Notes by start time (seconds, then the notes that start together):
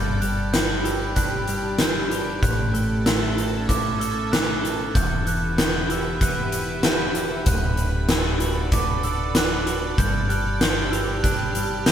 Already playing: G1 G2 G4 D5 A5 B5 G6
0.20 G3 F#6, closed hi-hat
0.53 D4 G6, snare, closed hi-hat
0.84 G4 E6, closed hi-hat
1.16 D4 F#6, kick, closed hi-hat
1.48 G3, closed hi-hat
1.78 D4 G6, snare, closed hi-hat
2.11 G4, closed hi-hat
2.42 A1 A2 C#4 A4 E5 A5 F#6, kick, closed hi-hat
2.74 A3, closed hi-hat
3.06 E4 E6, snare, closed hi-hat
3.37 A4, closed hi-hat
3.68 E4 D6, kick, closed hi-hat
3.99 A3 E6, closed hi-hat
4.32 E4 F#6, snare, closed hi-hat
4.62 A4, closed hi-hat
4.94 E1 E2 G4 B4 E5 B5 G6, kick, closed hi-hat
5.25 E3 F#6, closed hi-hat
5.57 B3, snare, closed hi-hat
5.89 E4 E6, closed hi-hat
6.21 B3 F#6, kick, closed hi-hat
6.52 E3, closed hi-hat
6.83 B3 G6, snare, closed hi-hat
7.15 E4, closed hi-hat
7.46 D1 D2 A4 D5 A5 F#6, kick, closed hi-hat
7.77 D3, closed hi-hat
8.09 B3 E6, snare, closed hi-hat
8.40 F#4, closed hi-hat
8.72 B3 D6, kick, closed hi-hat
9.03 D3 E6, closed hi-hat
9.35 B3 F#6, snare, closed hi-hat
9.67 F#4, closed hi-hat
9.97 G1 G2 G4 G6, kick, closed hi-hat
10.29 G3 F#6, closed hi-hat
10.60 D4 G6, snare, closed hi-hat
10.91 G4 E6, closed hi-hat
11.23 D4 F#6, kick, closed hi-hat
11.55 G3, closed hi-hat
11.86 D4 G6, snare, closed hi-hat